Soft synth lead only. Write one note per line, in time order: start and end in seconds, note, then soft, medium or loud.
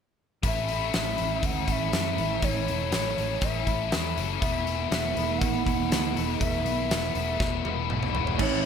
0.47 0.92 E5 loud
0.95 1.47 E5 medium
1.45 1.73 F#5 medium
1.72 2.19 E5 loud
2.19 2.45 E5 medium
2.44 2.93 C#5 medium
2.93 3.45 C#5 medium
3.44 4.18 E5 medium
4.41 4.88 E5 medium
4.90 5.40 E5 medium
5.38 6.14 F#5 medium
6.41 7.86 E5 loud
8.40 8.65 C#5 loud